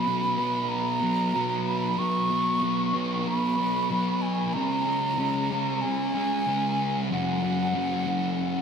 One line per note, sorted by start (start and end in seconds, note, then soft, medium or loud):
0.00 0.70 B5 loud
0.05 1.32 B2 medium
0.05 0.39 F#3 medium
0.05 0.36 B3 medium
0.36 1.01 F#3 medium
0.36 1.00 B3 medium
0.69 1.65 A#5 loud
1.01 1.33 F#3 medium
1.01 1.35 B3 medium
1.33 1.96 B2 medium
1.33 1.98 F#3 medium
1.33 1.99 B3 medium
1.66 2.00 B5 loud
1.97 2.60 B2 medium
1.97 2.31 F#3 loud
1.97 2.30 B3 loud
1.97 3.00 C#6 loud
2.30 2.61 F#3 medium
2.30 2.63 B3 medium
2.61 3.25 B2 medium
2.61 2.95 F#3 medium
2.61 2.93 B3 medium
2.93 3.58 F#3 medium
2.93 3.56 B3 medium
3.27 4.23 B5 loud
3.57 3.90 F#3 medium
3.57 3.90 B3 medium
3.89 4.52 B2 medium
3.89 4.53 F#3 medium
3.89 4.53 B3 medium
4.22 4.55 G#5 loud
4.53 5.17 C#3 medium
4.53 4.87 G#3 loud
4.53 4.85 C#4 loud
4.53 5.83 A#5 loud
4.86 5.18 G#3 medium
4.86 5.19 C#4 medium
5.18 5.82 C#3 medium
5.18 5.52 G#3 medium
5.18 5.50 C#4 loud
5.51 6.15 G#3 medium
5.51 6.13 C#4 medium
5.81 7.10 G#5 loud
6.14 6.46 G#3 medium
6.14 6.47 C#4 medium
6.46 7.09 C#3 medium
6.46 7.09 G#3 medium
6.46 7.10 C#4 medium
7.10 7.73 F#2 loud
7.10 7.44 C#3 loud
7.10 7.41 F#3 loud
7.10 8.62 F#5 loud
7.43 7.74 C#3 medium
7.43 7.75 F#3 medium
7.74 8.39 F#2 medium
7.74 8.08 C#3 medium
7.74 8.05 F#3 medium
8.06 8.62 C#3 medium
8.06 8.62 F#3 medium